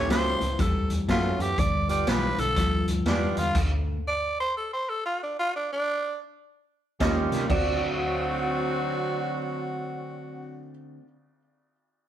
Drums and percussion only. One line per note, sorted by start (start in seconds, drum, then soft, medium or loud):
0.10 snare loud
0.10 closed hi-hat medium
0.41 closed hi-hat medium
0.59 kick loud
0.59 snare soft
0.59 closed hi-hat medium
0.90 closed hi-hat medium
1.08 kick medium
1.08 snare loud
1.08 closed hi-hat medium
1.40 closed hi-hat medium
1.58 kick loud
1.58 closed hi-hat medium
1.89 closed hi-hat medium
2.07 snare loud
2.07 closed hi-hat medium
2.38 closed hi-hat medium
2.56 kick loud
2.56 snare soft
2.56 closed hi-hat medium
2.87 closed hi-hat medium
3.05 snare loud
3.05 closed hi-hat medium
3.37 closed hi-hat medium
3.55 kick loud
3.55 closed hi-hat medium
3.55 crash medium
7.00 kick medium
7.00 snare loud
7.00 closed hi-hat medium
7.32 snare soft
7.32 closed hi-hat medium
7.50 kick loud
7.50 crash medium